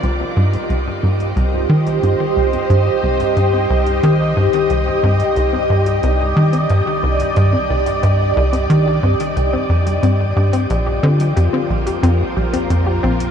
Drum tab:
HH |x--xx--xx--xx--x|x--xx--xx--xx--x|x--xx--xx--xx--x|x--xx--xx--xx--x|
CG |---o------o-----|-o------o------o|------o------o--|----o------o----|

HH |x--xx--xx--xx--x|
CG |---o------o-----|